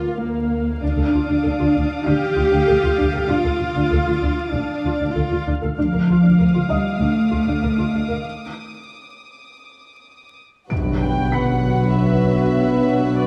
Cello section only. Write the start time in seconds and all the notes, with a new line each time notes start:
Already playing: F4
0.20 A#3
0.82 D4
2.06 G4
3.28 F4
4.52 D4
5.14 F4
5.77 F3
6.70 G3
7.00 A3
10.72 B2